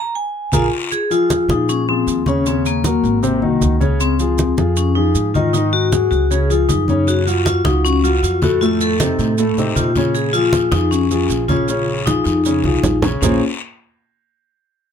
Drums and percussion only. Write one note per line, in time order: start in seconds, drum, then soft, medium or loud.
0.52 high conga loud
0.52 long guiro loud
0.52 maracas loud
0.92 high conga soft
0.92 maracas medium
1.11 high conga soft
1.11 maracas medium
1.30 high conga medium
1.30 maracas medium
1.49 high conga medium
1.49 maracas soft
1.69 high conga soft
1.69 maracas medium
1.88 high conga soft
2.07 high conga soft
2.07 maracas medium
2.26 high conga medium
2.26 maracas soft
2.46 high conga soft
2.46 maracas medium
2.66 high conga soft
2.66 maracas medium
2.84 high conga medium
2.84 maracas medium
3.04 high conga soft
3.04 maracas soft
3.23 high conga soft
3.23 maracas medium
3.42 high conga soft
3.61 high conga medium
3.61 maracas medium
3.81 high conga medium
3.81 maracas soft
4.00 high conga soft
4.00 maracas medium
4.19 high conga soft
4.19 maracas medium
4.38 high conga medium
4.38 maracas medium
4.58 high conga medium
4.58 maracas soft
4.76 high conga soft
4.76 maracas medium
4.97 high conga soft
5.15 high conga soft
5.15 maracas medium
5.35 high conga medium
5.35 maracas soft
5.54 high conga soft
5.54 maracas medium
5.73 high conga soft
5.92 high conga medium
5.92 maracas medium
6.12 high conga soft
6.12 maracas soft
6.31 high conga soft
6.31 maracas medium
6.50 high conga soft
6.50 maracas medium
6.69 high conga medium
6.69 maracas medium
6.88 high conga medium
6.88 maracas soft
7.07 high conga soft
7.07 long guiro medium
7.07 maracas medium
7.27 high conga soft
7.27 maracas medium
7.46 high conga medium
7.46 short guiro medium
7.46 maracas medium
7.65 high conga medium
7.65 short guiro medium
7.65 maracas soft
7.85 high conga soft
7.85 long guiro medium
7.85 maracas medium
8.04 high conga soft
8.04 maracas medium
8.23 high conga soft
8.23 short guiro medium
8.23 maracas medium
8.42 high conga medium
8.42 short guiro medium
8.42 maracas soft
8.61 high conga soft
8.61 long guiro medium
8.61 maracas medium
8.80 high conga soft
8.80 maracas medium
9.00 high conga medium
9.00 short guiro medium
9.00 maracas medium
9.19 high conga soft
9.19 short guiro medium
9.19 maracas soft
9.38 high conga soft
9.38 long guiro medium
9.38 maracas medium
9.58 high conga soft
9.58 maracas medium
9.76 high conga medium
9.76 short guiro medium
9.76 maracas medium
9.95 high conga medium
9.95 short guiro medium
9.95 maracas soft
10.15 high conga soft
10.15 long guiro medium
10.15 maracas medium
10.34 high conga soft
10.34 maracas medium
10.53 high conga medium
10.53 short guiro medium
10.53 maracas medium
10.71 high conga medium
10.71 short guiro medium
10.71 maracas soft
10.91 high conga soft
10.91 long guiro medium
10.91 maracas medium
11.11 high conga soft
11.11 maracas medium
11.29 high conga soft
11.29 short guiro medium
11.29 maracas medium
11.49 high conga medium
11.49 short guiro medium
11.49 maracas soft
11.68 high conga soft
11.68 long guiro medium
11.68 maracas medium
11.88 high conga soft
12.06 high conga medium
12.06 short guiro medium
12.06 maracas medium
12.25 high conga soft
12.25 short guiro medium
12.25 maracas soft
12.44 high conga soft
12.44 long guiro medium
12.44 maracas medium
12.64 high conga medium
12.82 low conga medium
12.82 short guiro medium
12.82 maracas medium
13.02 low conga medium
13.02 short guiro medium
13.02 maracas soft
13.22 low conga medium
13.22 long guiro medium
13.22 maracas medium